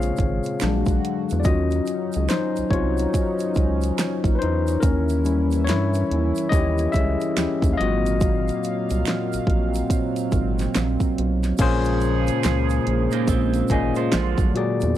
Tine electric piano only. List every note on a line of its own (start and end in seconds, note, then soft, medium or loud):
0.00 0.61 C#3 medium
0.00 0.62 G#3 soft
0.00 0.62 C4 medium
0.00 0.62 F4 medium
0.00 1.00 G#4 medium
0.00 0.62 C5 medium
0.00 0.62 C#5 medium
0.00 0.98 F5 medium
0.62 1.21 F#3 medium
0.62 1.22 G#3 medium
0.62 1.22 D4 medium
1.40 1.45 D5 medium
1.45 2.68 F#3 medium
1.45 2.68 C#4 medium
1.45 2.68 F4 medium
1.45 2.26 F#4 medium
1.45 2.32 D#5 medium
2.29 2.70 D#4 medium
2.29 2.73 C5 medium
2.71 4.32 F4 medium
2.71 4.40 C#5 medium
4.35 4.40 B4 medium
4.35 4.83 C5 medium
4.42 4.81 D#4 medium
4.80 5.62 A#4 medium
4.84 5.24 C#4 medium
5.25 6.48 G3 medium
5.25 6.48 C#4 medium
5.25 5.67 E4 medium
5.64 6.46 C#5 loud
5.69 6.48 E4 medium
6.49 6.69 D#5 loud
6.54 6.72 G4 medium
6.92 7.75 E5 loud
6.96 7.70 G#4 medium
7.37 7.75 C#4 soft
7.37 7.75 E4 medium
7.37 7.75 G4 medium
7.73 7.78 F5 medium
7.77 9.02 F#3 medium
7.77 9.02 A#3 soft
7.77 9.02 C4 soft
7.77 9.03 F4 medium
7.77 10.71 F#4 medium
7.77 10.70 D#5 loud
11.59 12.92 A#2 loud
11.59 12.92 A#3 loud
11.59 12.93 C#4 loud
11.59 12.93 G#4 loud
11.59 12.93 C5 loud
13.70 14.12 A#2 medium
13.70 14.13 A#3 medium
13.70 14.13 C#4 medium
13.70 14.13 G#4 medium
13.70 14.14 D#5 medium
14.54 14.89 A#2 medium
14.54 14.90 A#3 medium
14.54 14.90 F#4 medium
14.54 14.91 G#4 medium
14.54 14.91 D5 medium